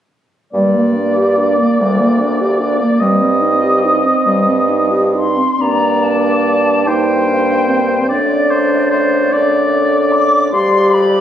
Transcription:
0.53 G2 G3 A#3 D5
0.75 A#3
0.96 D4
1.17 G4
1.37 D4
1.59 A#3
1.79 D2 G3
2.00 A#3
2.20 D4
2.40 G4
2.60 D4
2.80 A#3
3.00 G2 G3 C4 D#5
3.21 C4
3.41 D#4
3.62 G4
3.84 D#4
4.05 C4
4.26 G2 G3
4.48 C4
4.69 D#4
4.92 G4
5.14 D#4 C6
5.37 C4
5.60 G2 A#3 D4 D5 A#5
6.04 A5
6.86 A#3 D#4 C5 G5
7.27 D4
7.68 C4
8.07 F#2 A3 D4 D5
8.50 C5
8.91 C5
9.31 A3 D4 D5
10.12 D6
10.52 F2 G3 G4 D5 C6
10.93 B5

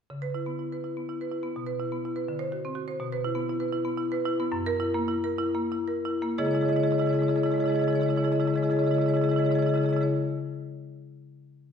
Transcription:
0.10 C#3
0.22 B4
0.34 E4
0.46 B3
0.59 E4
0.72 B4
0.84 E4
0.97 B3
1.09 E4
1.21 B4
1.32 E4
1.43 B3
1.56 B2
1.67 B4
1.80 E4
1.92 B3
2.05 E4
2.16 B4
2.28 D3
2.39 C5
2.52 F#4
2.65 C4
2.75 F#4
2.88 C5
3.00 B2
3.12 B4
3.25 E4
3.35 B3
3.49 E4
3.60 B4
3.72 E4
3.85 B3
3.98 E4
4.12 B4
4.25 E4
4.40 B3
4.52 F#2
4.66 A#4
4.80 E4
4.94 A#3
5.08 E4
5.24 A#4
5.38 E4
5.55 A#3
5.72 E4
5.88 A#4
6.05 E4
6.22 A#3
6.38 C#3 G#3 E4 G#4 C#5 D#5
6.45 C#3 G#3 E4 G#4 C#5 D#5
6.51 G#3 E4 G#4 C#5 D#5
6.56 C#3 C#5
6.61 G#3 E4 G#4 D#5
6.65 C#3 G#3 G#4 C#5 D#5
6.70 C#3 E4 C#5
6.76 G#3 E4 G#4 C#5 D#5
6.83 C#3 G#3 E4 G#4 D#5
6.87 G#4 C#5 D#5
6.92 C#3 G#3 E4 C#5
6.98 G#3 E4 G#4 C#5 D#5
7.02 C#3
7.06 G#3 E4 G#4 C#5 D#5
7.11 C#3 E4 G#4 D#5
7.16 C#3 G#3 C#5
7.21 E4 G#4 C#5 D#5
7.27 C#3 G#3 E4 G#4 D#5
7.31 C#5
7.36 C#3 G#3 E4 G#4 C#5 D#5
7.43 C#3 G#3 E4 G#4 C#5 D#5
7.51 G#3 E4 G#4 C#5 D#5
7.56 C#3 E4 D#5
7.60 C#3 G#3 G#4 C#5
7.66 E4 G#4 C#5 D#5
7.70 C#3 G#3 E4
7.74 G#4 C#5 D#5
7.78 C#3 G#3 E4 C#5 D#5
7.84 G#3 E4 G#4
7.89 C#3 G#4 C#5 D#5
7.95 G#3 E4 C#5 D#5
7.99 C#3 E4 G#4 C#5 D#5
8.06 C#3 G#3 E4 G#4 D#5
8.10 C#5
8.15 G#3 E4 G#4 C#5 D#5
8.19 C#3 G#3
8.24 C#3 E4 G#4 C#5 D#5
8.31 G#3 E4 G#4 C#5 D#5
8.36 C#3 G#3
8.40 E4 G#4 C#5 D#5
8.45 C#3 G#3 E4 G#4 D#5
8.50 C#5
8.54 C#3 G#3 E4 G#4 C#5 D#5
8.62 C#3 G#3 E4 G#4 C#5 D#5
8.70 C#3 G#3 E4 G#4 C#5 D#5
8.77 C#3 E4 G#4 C#5 D#5
8.82 G#3 E4
8.86 C#3 G#4 C#5 D#5
8.91 G#3 E4 G#4 C#5 D#5
8.96 C#3 G#3 E4
9.01 G#4 C#5 D#5
9.06 C#3 G#3 E4 C#5 D#5
9.10 E4 G#4
9.14 C#3 G#3 G#4 C#5 D#5
9.21 C#3 G#3 E4 G#4 C#5 D#5
9.29 G#3 E4 G#4 C#5 D#5
9.34 C#3 E4 C#5
9.39 C#3 G#3 G#4 D#5
9.44 E4 G#4 C#5 D#5
9.49 C#3 G#3 E4 C#5
9.55 C#3 G#3 E4 G#4 D#5
9.59 G#4 C#5 D#5
9.66 C#3 G#3 E4 G#4 C#5 D#5
9.74 C#3 G#3 E4 G#4 C#5 D#5
9.81 C#3 G#3 E4 C#5 D#5
9.86 E4 G#4 C#5
9.91 C#3 G#3 G#4 D#5
9.96 E4 C#5 D#5
10.01 C#3 G#3 E4 G#4 C#5

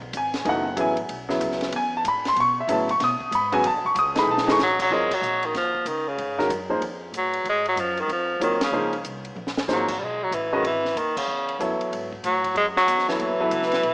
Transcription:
Already playing: B1
0.02 kick
0.13 G#1 G#5, hi-hat pedal, ride
0.34 snare, ride
0.45 F#1 B2 E3 A3 D#4, ride
0.49 F#5
0.77 A1 C#3 F#3 B3 E4 G#5, hi-hat pedal, ride
0.97 ride
1.09 B1, ride
1.29 C#3 F#3 B3 E4, snare
1.40 C#2, hi-hat pedal, ride
1.52 snare
1.61 snare, ride
1.72 E2 G#5, ride
1.97 A5
2.04 G#2 B5, hi-hat pedal, ride
2.25 C6, snare, ride
2.36 B2, ride
2.40 C#6
2.60 E5
2.67 A2 C#3 F#3 B3 E4, hi-hat pedal, ride
2.72 A5
2.89 C#6, ride
3.00 B2, snare, ride
3.04 D#6
3.20 muted upright bass stroke, kick
3.31 G#2 B5, hi-hat pedal, ride
3.52 C#3 F#3 B3 F#4 G#5, ride
3.63 E2, ride
3.67 A5
3.74 B1
3.85 A1 C#6
3.95 C#2 D#6, hi-hat pedal, ride
4.15 E3 A3 D#4 G#4 B5, snare, ride
4.26 B1
4.31 A5
4.38 snare
4.47 E3 A3 D#4 G#4, snare
4.52 C#6
4.59 A1, snare, hi-hat pedal
4.63 F#3
4.79 F#3, kick, crash
4.90 G#1 F#3 G#3 C4 F4 A#4 C#5
5.11 F#3, kick, crash
5.21 A#1, hi-hat pedal
5.43 D#3, ride
5.53 D#2 F3, snare, ride
5.75 kick
5.85 C#2 D#3, hi-hat pedal, ride
6.08 C#3
6.17 G#2, ride
6.38 D#3 G#3 C#4 F#4 A#4, snare
6.49 F#2, hi-hat pedal, ride
6.70 F3 A#3 D#4 G#4 C5
6.81 F2, ride
7.12 A2, hi-hat pedal, ride
7.18 F#3
7.33 ride
7.44 G#2, ride
7.49 G#3
7.66 F#3, ride
7.76 F#2, hi-hat pedal, ride
7.80 F3
7.97 D#3, ride
8.08 F2, ride
8.12 F3
8.40 D#2 D#3 F#3 C4 F4 A#4 C#5, hi-hat pedal, ride
8.61 C#3, snare, ride
8.72 C#2 F3 A#3 D#4 G#4 C5
8.93 ride
9.04 C2, hi-hat pedal, ride
9.25 ride
9.35 A#1, mid tom
9.47 snare
9.57 snare
9.68 G#1 F3 F#3 A#3 D#4 G#4 C5, snare, hi-hat pedal
9.88 kick, crash
9.99 B1 G3
10.04 G#3
10.23 F#3
10.31 A1 E3, hi-hat pedal, ride
10.53 D#3 G#3 C#4 F#4 B4 D#5
10.63 G#1 E3, ride
10.85 snare
10.95 D#2 D#3, hi-hat pedal, ride
11.17 C#3, kick, crash
11.27 E2
11.49 ride
11.59 F#2 F#3 B3 E4 A4 C#5, hi-hat pedal, ride
11.79 muted upright bass stroke, ride
11.91 G#2, ride
12.12 kick
12.23 A2 F#3, hi-hat pedal, ride
12.44 kick, ride
12.55 F#2 G#3, ride
12.76 F#3, snare
12.87 E2, hi-hat pedal, ride
12.98 snare
13.08 E3 F#3 B3 E4 A4 C#5, snare
13.19 D#2, ride
13.39 F#3 B3 E4 A4 B4, muted upright bass stroke
13.50 C#2, hi-hat pedal, ride
13.62 snare
13.72 snare, ride
13.83 B1, ride

